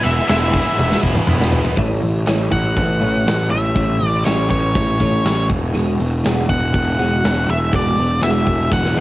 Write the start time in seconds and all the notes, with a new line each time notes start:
Already playing: E3 B3 E4 G#4 E5
0.03 E1 G#3 B3 E4 E5
0.28 E1 E3 G#3 B3 E4 E5, snare, crash
0.54 G#3 B3 E4, kick
0.78 E1, high tom
0.92 snare
1.03 E1 G#3 B3 E4, kick
1.15 mid tom
1.27 E1 E3 G#3 B3 E4, mid tom
1.41 snare
1.52 floor tom
1.65 floor tom
1.77 A1 E3 A3 C#4 E4, kick, open hi-hat
2.01 A1, muted clean electric guitar stroke, open hi-hat
2.26 A1 E3 A3 C#4 E4, snare, open hi-hat
2.51 A1 F#5, muted clean electric guitar stroke, kick, open hi-hat
2.76 A1, muted clean electric guitar stroke, kick, open hi-hat
3.01 A1 E3 A3 C#4 E4, open hi-hat
3.26 A1, muted clean electric guitar stroke, snare, open hi-hat
3.50 A1 E5, muted clean electric guitar stroke, open hi-hat
3.75 A1 E3 A3 C#4 E4, kick, open hi-hat
4.00 A1, muted clean electric guitar stroke, open hi-hat
4.07 D5
4.25 A1 E3 A3 C#4 E4 C#5, snare, open hi-hat
4.50 A1 C#5, muted clean electric guitar stroke, kick, open hi-hat
4.75 A1, muted clean electric guitar stroke, kick, open hi-hat
5.00 A1 E3 A3 C#4 E4, kick, open hi-hat
5.25 A1, muted clean electric guitar stroke, snare, open hi-hat
5.49 E1, muted clean electric guitar stroke, kick, open hi-hat
5.74 E1 E3 G#3 B3 F#4, open hi-hat
5.99 E1, muted clean electric guitar stroke, open hi-hat
6.24 E1 E3 G#3 B3 F#4, snare, open hi-hat
6.49 E1 F#5, muted clean electric guitar stroke, kick, open hi-hat
6.73 E1, muted clean electric guitar stroke, kick, open hi-hat
6.98 E1 E3 G#3 B3 F#4, open hi-hat
7.23 E1, muted clean electric guitar stroke, snare, open hi-hat
7.47 E1 E5, muted clean electric guitar stroke, open hi-hat
7.72 E1 E3 G#3 B3 F#4 D5, kick, open hi-hat
7.97 E1, muted clean electric guitar stroke, open hi-hat
8.21 E1 E3 G#3 B3 F#4 E5, snare, open hi-hat
8.46 E1, muted clean electric guitar stroke, kick, open hi-hat
8.71 E1 F#5, muted clean electric guitar stroke, kick, snare
8.85 snare
8.96 E1 E3 G#3 B3 F#4